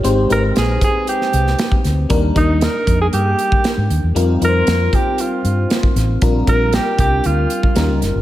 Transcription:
<<
  \new Staff \with { instrumentName = "Alto saxophone" } { \time 4/4 \key bes \mixolydian \tempo 4 = 117 r8 bes'8 aes'8 aes'8 g'4. r8 | r8 ees'8 bes'8. aes'16 g'4. r8 | r8 bes'4 g'8 f'4. r8 | r8 bes'8 g'8 g'8 f'4. r8 | }
  \new Staff \with { instrumentName = "FM electric piano" } { \time 4/4 \key bes \mixolydian <aes c' ees' g' c''>8 <aes c' ees' g' ces''>2 r4. | <g bes d' ees' bes'>8 <g bes d' ees' bes'>2 r4. | <g c' ees' f' bes'>8 <g c' ees' f' bes' c''>2 r4. | <g c' d' f' bes'>8 <g c' d' f' bes'>2 r8 <g des' ees' f' bes'>4 | }
  \new Staff \with { instrumentName = "Fingered electric bass" } { \clef bass \time 4/4 \key bes \mixolydian aes,,8 aes,,8 bes,,8 r4 c,8 r8 d,8 | ees,8 ees,8. r16 f,8 g,8 r8. aes,16 ees,16 e,16 | f,8 f,8 f,8 r4 g,8 r8 a,,8 | bes,,8 bes,,8. r16 c,8 d,8 r8 ees,16 des,16 ges,,16 g,,16 | }
  \new DrumStaff \with { instrumentName = "Drums" } \drummode { \time 4/4 hh8 hh8 <hh sn>8 <hh bd>8 hh16 sn16 hh16 sn16 <hh sn>16 bd16 <hh sn>8 | <hh bd>8 <hh bd>8 <hh sn>8 <hh bd>8 hh8 hh16 bd16 <hh sn>8 hh8 | hh8 hh8 <hh sn>8 <hh bd>8 hh8 hh8 <hh sn>16 bd16 <hh sn>8 | <hh bd>8 <hh bd>8 <hh sn>8 <hh bd>8 hh8 hh16 bd16 <hh sn>8 <hh sn>8 | }
>>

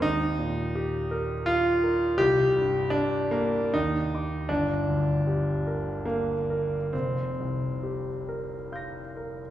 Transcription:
\new Staff \with { instrumentName = "Grand piano" } { \time 3/4 \key f \mixolydian \tempo 4 = 77 << { ees'2 f'4 | g'4 d'8 bes8 ees'4 | d'2 bes4 | c'2 <g''' bes'''>4 | } \\ { ees,8 bes,8 g'8 bes'8 f''8 bes'8 | c,8 g,8 g'8 bes'8 ees,8 <ees'' d'''>8 | g,,8 d,8 g'8 bes'8 f''8 bes'8 | f,,8 c,8 g'8 bes'8 f''8 bes'8 | } >> }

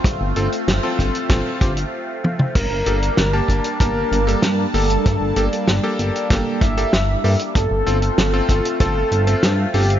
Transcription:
<<
  \new Staff \with { instrumentName = "Analog synth lead" } { \time 4/4 \key g \minor \tempo 4 = 96 r1 | bes'2 bes'4. a'8~ | a'4 r4. e''4. | a'2 a'4. g'8 | }
  \new Staff \with { instrumentName = "Electric grand piano" } { \time 4/4 \key g \minor r8 <c' f' a'>16 r8 <c' f' a'>8. <c' f' a'>8 <c' f' g'>16 r4 r16 | r8 <bes g' a'>16 r8 <bes g' a''>8. <bes g' a''>8. <bes g' a'>16 r8 <bes g' a'>16 r16 | r8 <bes g' a'>16 r8 <bes g' a'>8. <bes g' a'>8. <bes g' a'>16 r8 <bes g' a'>16 r16 | r8 <c' f' a'>16 r8 <c' f' a'>8. <c' f' a'>8. <c' f' a'>16 r8 <c' f' a'>16 r16 | }
  \new Staff \with { instrumentName = "Analog synth pad" } { \time 4/4 \key g \minor <a c' f'>1 | <g bes d' a''>1~ | <g bes d' a''>1 | <a c' f'>1 | }
  \new Staff \with { instrumentName = "Analog synth bass" } { \clef bass \time 4/4 \key g \minor g,16 g,,16 g,,16 r16 g,,16 r16 g,,16 r16 g,,16 r16 g,,16 r4 r16 | g,,16 g,,16 g,,16 r16 g,,16 r16 g,,16 r16 g,,16 r16 g,,16 r16 g,16 r16 g,,16 r16 | g,16 g,,16 g,,16 r16 g,,16 r16 g,,16 r16 g,,16 r16 g,,16 r16 g,,16 r16 g,16 r16 | g,,16 g,,16 g,,16 r16 g,,16 r16 g,,16 r16 g,,16 r16 g,,16 r16 g,16 r16 g,,16 r16 | }
  \new DrumStaff \with { instrumentName = "Drums" } \drummode { \time 4/4 <hh bd>8 hh16 hh16 <hh sn>8 <hh bd>16 hh16 <hh bd sn>8 <hh bd>16 hh16 r8 tommh16 toml16 | <cymc hh bd>8 hh16 hh16 <hh sn>8 <hh bd>16 hh16 <hh bd>8 hh16 hh16 <hh sn>8 hho16 hh16 | <hh bd>8 hh16 hh16 <hh sn>8 hh16 hh16 <hh bd sn>8 <hh bd>16 hh16 <hh sn>8 hho16 hh16 | <hh bd>8 hh16 hh16 <hh sn>8 <hh bd>16 hh16 <hh bd>8 hh16 hh16 <hh sn>8 hho16 hh16 | }
>>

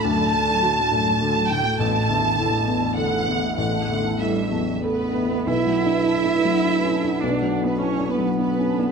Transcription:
<<
  \new Staff \with { instrumentName = "Violin section" } { \time 3/4 \key b \minor \tempo 4 = 103 a''2~ a''8 g''8 | a''2 fis''4 | fis''4 e''4 b'4 | e''2. |
d''8. b'16 cis''8 b'8 b'4 | }
  \new Staff \with { instrumentName = "Marimba" } { \time 3/4 \key b \minor d'16 d''16 a'16 d''16 d'16 r16 d''16 fis'16 d'16 r8 a'16 | a'16 a''16 e''16 a''16 a'16 r16 a''16 d''16 a'16 r16 e''16 e''16 | a'16 a''16 e''16 a''16 a'16 r16 a''16 d''16 a'16 r16 e''16 e''16 | b'16 fis''16 fis''16 b'16 a''16 d''16 b'16 fis''16 r16 b'16 a''16 fis''16 |
b'16 fis''16 fis''16 b'16 a''16 d''16 b'16 fis''16 r16 b'16 a''16 fis''16 | }
  \new Staff \with { instrumentName = "Ambient pad" } { \time 3/4 \key b \minor <d' fis' a'>2. | <d' e' a'>2.~ | <d' e' a'>2. | <d' fis' a'>2.~ |
<d' fis' a'>2. | }
  \new Staff \with { instrumentName = "Felt piano" } { \time 3/4 \key b \minor <d, a,>8 a8 fis'8 a,8 a8 a,8 | a,,8 e,8 e'8 e,8 a8 e,8 | a,,8 a8 e'8 e,8 a8 e,8 | \tuplet 3/2 { b,,8 fis8 d'8 e'8 d'8 fis8 d'8 cis'8 d'8 } |
\tuplet 3/2 { b,,8 fis8 d'8 e'8 d'8 fis8 d'8 cis'8 d'8 } | }
  \new Staff \with { instrumentName = "Cello" } { \clef bass \time 3/4 \key b \minor fis,16 a,16 d16 fis16 d16 a,16 fis,16 a,16 d16 fis16 d16 a,16 | e,16 a,16 d16 e16 d16 a,16 e,16 a,16 d16 e16 d16 a,16 | e,16 a,16 d16 e16 g8 fis8 b4 | e'2. |
d'8. b16 cis'8 b8 b4 | }
>>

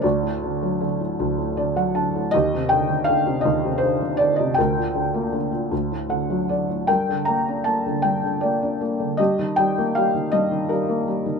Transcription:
<<
  \new Staff \with { instrumentName = "Felt piano" } { \time 6/8 \key g \minor \tempo 4. = 52 << { d''4 r4 d''16 fis''16 a''8 | ees''8 g''8 f''8 ees''8 c''8 d''16 ees''16 | g''4 r4 fis''8 d''8 | g''8 bes''8 a''8 g''8 d''8 r8 |
ees''8 g''8 f''8 ees''8 bes'8 r8 | } \\ { fis'4. r4. | g'4. r4. | bes'4. r4. | bes'4. r4. |
g'4. r4. | } >> }
  \new Staff \with { instrumentName = "Felt piano" } { \clef bass \time 6/8 \key g \minor d,16 a,16 d16 fis16 d16 a,16 d,16 a,16 d16 fis16 d16 a,16 | ees,16 c16 d16 ees16 d16 c16 ees,16 c16 d16 ees16 d16 c16 | d,16 bes,16 d16 bes16 d16 bes,16 d,16 a,16 d16 fis16 d16 a,16 | g,16 d16 bes16 d'16 bes16 d16 g,16 d16 bes16 d'16 bes16 d16 |
g,16 ees16 g16 bes16 g16 ees16 g,16 ees16 g16 bes16 g16 ees16 | }
>>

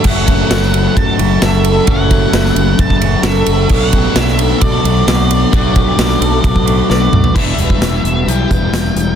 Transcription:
<<
  \new Staff \with { instrumentName = "Lead electric guitar" } { \time 4/4 \key fis \phrygian \tempo 4 = 131 fis''2 a''4 e''4 | fis''2 a''4 e''4 | fis''4 e''4 d''2~ | d''2. d''4 |
e''2 g''2 | }
  \new Staff \with { instrumentName = "Twelve-string acoustic guitar" } { \time 4/4 \key fis \phrygian e'8 fis'8 e'8 fis'4 r8 a'4 | e'8 fis'8 e'8 fis'4 r8 a'4 | fis'8 g'8 fis'8 a'4 r8 b'4 | fis'8 g'8 fis'8 a'4 r8 b'4 |
b'8 e'4 fis'8 g'8 b'4 r8 | }
  \new Staff \with { instrumentName = "Clean electric guitar" } { \time 4/4 \key fis \phrygian <fis, cis e a cis' fis'>2~ <fis, cis e a cis' fis'>8 <fis, cis e a cis' fis'>8 <fis, cis e a cis' fis'>4 | <fis, cis e a cis' fis'>2~ <fis, cis e a cis' fis'>8 <fis, cis e a cis' fis'>8 <fis, cis e a cis' fis'>4 | <b, fis a d' fis'>2~ <b, fis a d' fis'>8 <b, fis a d' fis'>8 <b, fis a d' fis'>4 | <b, fis a d' fis'>2~ <b, fis a d' fis'>8 <b, fis a d' fis'>8 <b, fis a d' fis'>4 |
<e, b, e g d' e'>1 | }
  \new Staff \with { instrumentName = "Overdriven electric guitar" } { \clef bass \time 4/4 \key fis \phrygian <fis, cis fis a cis'>1 | <fis, cis fis a cis'>1 | <b, fis b d'>1 | <b, fis b d'>1 |
<e g b e'>2 <e g b e'>2 | }
  \new Staff \with { instrumentName = "Fingered electric bass" } { \clef bass \time 4/4 \key fis \phrygian fis,,4 fis,,4 fis,8 fis,,8 fis,,4 | fis,,4 fis,,8 fis,,8 r4 fis,,8 fis,,8 | b,,4 b,,4 b,8 b,,8 b,,4 | b,,4 b,,8 b,,8 b,,4 b,,8 b,,8 |
e,,8 e,,8 e,,8 e,,8 b,,8 e,,8 e,,8 e,,8 | }
  \new DrumStaff \with { instrumentName = "Drums" } \drummode { \time 4/4 <cymc bd>8 <bd cymr>8 <cymr sn>16 sn16 cymr8 <bd cymr>8 cymr8 <cymr sn>8 cymr8 | <bd cymr>8 <bd cymr>8 <cymr sn>16 sn16 cymr8 <bd cymr>16 bd16 cymr8 <cymr sn>8 cymr8 | <cymc bd>8 <bd cymr>8 <cymr sn>16 sn16 cymr8 <bd cymr>8 cymr8 <cymr sn>8 cymr8 | <bd cymr>8 <bd cymr>8 <cymr sn>16 sn16 cymr8 <bd cymr>16 bd16 cymr8 sn8 toml16 tomfh16 |
<cymc bd>8 hh16 bd16 <hh sn>8 hh8 hh8 <hh bd>8 <hh sn>8 hh8 | }
>>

